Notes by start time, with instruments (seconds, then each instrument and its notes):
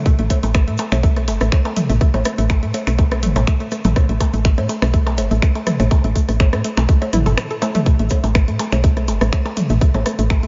0.06 synth arpeggio sound A3, kick, closed hi-hat, shaker
0.19 fm bass A1, synth arpeggio sound A3, closed hi-hat
0.30 synth arpeggio sound A3, kick, cross-stick, closed hi-hat, percussion blips, shaker
0.43 fm bass A1, synth arpeggio sound A3, closed hi-hat, percussion blips, shaker
0.54 synth arpeggio sound A3, finger snap, kick, cross-stick, closed hi-hat, shaker
0.68 fm bass A2, synth arpeggio sound A3, closed hi-hat
0.77 synth arpeggio sound A3, cross-stick, closed hi-hat, percussion blips, shaker
0.92 fm bass B1, synth arpeggio sound A3, finger snap, closed hi-hat, percussion blips, shaker
1.03 synth arpeggio sound A3, kick, closed hi-hat, shaker
1.16 synth arpeggio sound A3, cross-stick, closed hi-hat
1.28 fm bass G1, synth arpeggio sound A3, closed hi-hat, percussion blips, shaker
1.41 fm bass A1, synth arpeggio sound A3, cross-stick, closed hi-hat, shaker
1.52 synth arpeggio sound A3, finger snap, kick, closed hi-hat, percussion blips, shaker
1.65 synth arpeggio sound A3, cross-stick, closed hi-hat, percussion blips
1.77 synth arpeggio sound A3, closed hi-hat, mid tom, shaker
1.89 fm bass A1, synth arpeggio sound A3, closed hi-hat, shaker
2.01 synth arpeggio sound A3, kick, cross-stick, closed hi-hat, shaker
2.14 fm bass A1, synth arpeggio sound A3, closed hi-hat, percussion blips
2.25 synth arpeggio sound A3, cross-stick, closed hi-hat, shaker
2.38 fm bass A1, synth arpeggio sound A3, closed hi-hat, shaker
2.49 synth arpeggio sound A3, finger snap, kick, cross-stick, closed hi-hat, percussion blips, shaker
2.63 fm bass A2, synth arpeggio sound A3, closed hi-hat
2.74 synth arpeggio sound A3, closed hi-hat, percussion blips, shaker
2.87 fm bass B1, synth arpeggio sound A3, finger snap, cross-stick, closed hi-hat, shaker
2.98 synth arpeggio sound A3, kick, closed hi-hat, percussion blips, shaker
3.11 synth arpeggio sound A3, cross-stick, closed hi-hat
3.23 fm bass G1, synth arpeggio sound A3, closed hi-hat, mid tom, shaker
3.36 fm bass A1, synth arpeggio sound A3, cross-stick, closed hi-hat, percussion blips, shaker
3.47 synth arpeggio sound A3, finger snap, kick, closed hi-hat, shaker
3.60 synth arpeggio sound A3, closed hi-hat
3.71 synth arpeggio sound A3, cross-stick, closed hi-hat, shaker
3.84 fm bass A1, synth arpeggio sound A3, closed hi-hat, mid tom, percussion blips, shaker
3.96 synth arpeggio sound A3, kick, cross-stick, closed hi-hat, percussion blips, shaker
4.09 fm bass A1, synth arpeggio sound A3, closed hi-hat
4.20 synth arpeggio sound A3, kick, cross-stick, closed hi-hat, percussion blips, shaker
4.33 fm bass A1, synth arpeggio sound A3, closed hi-hat, shaker
4.45 synth arpeggio sound A3, finger snap, kick, closed hi-hat, shaker
4.58 fm bass A2, synth arpeggio sound A3, cross-stick, closed hi-hat, percussion blips
4.69 synth arpeggio sound A3, closed hi-hat, percussion blips, shaker
4.82 fm bass B1, synth arpeggio sound A3, finger snap, cross-stick, closed hi-hat, shaker
4.94 synth arpeggio sound A3, kick, closed hi-hat, shaker
5.07 synth arpeggio sound A3, cross-stick, closed hi-hat, percussion blips
5.18 fm bass G1, synth arpeggio sound A3, closed hi-hat, percussion blips, shaker
5.31 fm bass A1, synth arpeggio sound A3, closed hi-hat, shaker
5.42 synth arpeggio sound A3, finger snap, kick, cross-stick, closed hi-hat, shaker
5.55 synth arpeggio sound A3, closed hi-hat, percussion blips
5.67 synth arpeggio sound A3, cross-stick, closed hi-hat, mid tom, shaker
5.80 fm bass A1, synth arpeggio sound A3, closed hi-hat, percussion blips, shaker
5.91 synth arpeggio sound A3, kick, cross-stick, closed hi-hat, percussion blips, shaker
6.04 fm bass A1, synth arpeggio sound A3, closed hi-hat
6.16 synth arpeggio sound A3, kick, closed hi-hat, shaker
6.29 fm bass A1, synth arpeggio sound A3, cross-stick, closed hi-hat, shaker
6.40 synth arpeggio sound A3, finger snap, kick, closed hi-hat, percussion blips, shaker
6.53 fm bass A2, synth arpeggio sound A3, cross-stick, closed hi-hat
6.64 synth arpeggio sound A3, closed hi-hat, shaker
6.77 fm bass B1, synth arpeggio sound A3, finger snap, cross-stick, closed hi-hat, percussion blips, shaker
6.89 synth arpeggio sound A3, kick, closed hi-hat, shaker
7.02 synth arpeggio sound A3, closed hi-hat, percussion blips
7.13 fm bass A1, synth arpeggio sound E4, cross-stick, closed hi-hat, mid tom, shaker
7.26 fm bass G1, synth arpeggio sound A4, closed hi-hat, percussion blips, shaker
7.37 finger snap, cross-stick, closed hi-hat, shaker
7.51 synth arpeggio sound A4, closed hi-hat
7.62 synth arpeggio sound A3, cross-stick, closed hi-hat, percussion blips, shaker
7.75 synth arpeggio sound A3, closed hi-hat, mid tom, shaker
7.86 synth arpeggio sound A3, kick, closed hi-hat, shaker
7.99 fm bass A1, synth arpeggio sound A3, closed hi-hat
8.09 synth arpeggio sound A3, kick, cross-stick, closed hi-hat, percussion blips, shaker
8.24 fm bass A1, synth arpeggio sound A3, closed hi-hat, percussion blips, shaker
8.35 synth arpeggio sound A3, finger snap, kick, cross-stick, closed hi-hat, shaker
8.48 fm bass A2, synth arpeggio sound A3, closed hi-hat
8.59 synth arpeggio sound A3, cross-stick, closed hi-hat, percussion blips, shaker
8.72 fm bass B1, synth arpeggio sound A3, finger snap, closed hi-hat, percussion blips, shaker
8.84 synth arpeggio sound A3, kick, closed hi-hat, shaker
8.97 synth arpeggio sound A3, cross-stick, closed hi-hat
9.08 fm bass G1, synth arpeggio sound A3, closed hi-hat, percussion blips, shaker
9.21 fm bass A1, synth arpeggio sound A3, cross-stick, closed hi-hat, shaker
9.32 synth arpeggio sound A3, finger snap, kick, closed hi-hat, percussion blips, shaker
9.45 synth arpeggio sound A3, cross-stick, closed hi-hat, percussion blips
9.57 synth arpeggio sound A3, closed hi-hat, mid tom, shaker
9.69 fm bass A1, synth arpeggio sound A3, closed hi-hat, shaker
9.81 synth arpeggio sound A3, kick, cross-stick, closed hi-hat, shaker
9.94 fm bass A1, synth arpeggio sound A3, closed hi-hat, percussion blips
10.06 synth arpeggio sound A3, cross-stick, closed hi-hat, shaker
10.19 fm bass A1, synth arpeggio sound A3, closed hi-hat, shaker
10.30 synth arpeggio sound A3, finger snap, kick, cross-stick, closed hi-hat, percussion blips, shaker
10.43 fm bass A2, synth arpeggio sound A3, closed hi-hat